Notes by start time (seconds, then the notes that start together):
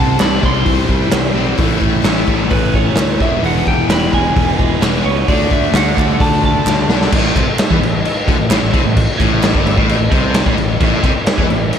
Already playing: C2 C3 E3 G3 C4 E4 G4 C5 A5
0.00 G3 C4 E4
0.20 C2 C3 E3 G3 C4 E4 B5, snare, clap, open hi-hat
0.43 C2 E3 G3 C4 C6, kick
0.47 E4
0.55 G3 C4 E4
0.64 C2 C4, kick, open hi-hat
0.78 G3 C4 E4
0.87 C2 E3 G3 C4 E4, kick
1.11 C2 C3 E3 G3 C4 E4, snare, clap, open hi-hat
1.22 G3 C4 E4
1.34 B1 G3 C4
1.39 C3
1.44 G3 C4 E4
1.57 A1 A2 E3 A3 C#4 E4 A4 C#5, kick, open hi-hat
1.63 A3
1.80 A1 E3 A3 C#4 E4, kick
2.02 A1 A2 E3 A3 C#4 E4, snare, clap, open hi-hat
2.26 A1 E3 A3 C#4 E4, kick
2.40 A3 C#4 E4
2.50 A1 C#4 B4, kick, open hi-hat
2.63 A3 C#4 E4
2.74 E3 A3 C#4 E4 C#5, kick
2.96 D2 A2 E3 A3 C#4 E4, snare, clap, open hi-hat
3.09 A3 C#4 E4
3.19 E1 E2 B2 E3 G#3 E4 G#4 B4 E5, kick
3.23 E3 B3
3.43 E1 E2 F#5, open hi-hat
3.66 E1 E3 G#3 B3 E4 G5, kick
3.89 E1 E2 B2 E3 G#3 B3 E4 B5, snare, clap, open hi-hat
4.11 E1 E3 G#3 G#5, kick
4.15 B3 E4
4.24 E3 G#3 B3 E4
4.35 E1 B3, kick, open hi-hat
4.48 E3 G#3 E4
4.58 E1 E3 G#3 B3 E4, kick
4.81 E1 E2 B2 E3 G#3 B3 E4, snare, clap, open hi-hat
4.93 E3 G#3 B3 E4
5.04 C#2 B3 C#5
5.17 E3 G#3 B3 E4
5.27 D2 D3 A3 D4 F#4 A4 D5, kick, open hi-hat
5.32 D4
5.51 D2 D3 A3 E5, kick
5.55 F#4
5.72 D2 D3 A3 D4 F#5, snare, clap, open hi-hat
5.77 F#4
5.96 D2 D3 A3 D4 F#4, kick, clap
6.10 A3 D4 F#4
6.19 D2 D4 A5, kick, open hi-hat
6.32 A3 F#4
6.42 D3 A3 D4 F#4 A5, kick
6.65 D2 D3 A3 D4 F#4, snare, clap
6.77 A3 D4 F#4
6.88 B1 A3 D4, snare
6.93 D3
7.01 A3 D4 F#4, snare
7.12 A1 A2 E4 A4 C#5, kick, crash
7.36 C2 C3, kick, clap, crash
7.47 muted fingered electric bass stroke, muted overdriven electric guitar stroke
7.59 snare, clap, crash
7.70 E2 E3, kick
7.80 A1 A2, crash
8.05 crash
8.28 D2 D3, kick, crash
8.39 A1 A2
8.50 A1 A2, snare, clap, crash
8.62 A1 A2
8.73 C2 C3, kick, crash
8.84 A1 A2
8.97 kick, crash
9.18 A1 A2, kick, clap, crash
9.43 snare, clap, crash
9.53 G1 G2, kick
9.67 crash
9.77 A1 A2, kick
9.89 crash
9.99 A1 A2
10.11 C2 C3, kick, crash
10.35 snare, clap, crash
10.46 A1 A2, kick
10.57 A1 A2, crash
10.80 A1 A2 A3 C#4 E4, kick, crash
11.03 C2 C3, kick, clap, crash
11.15 muted overdriven electric guitar stroke, muted fingered electric bass stroke
11.27 snare, clap, crash
11.38 E2 E3, kick
11.49 A1 A2, crash
11.73 crash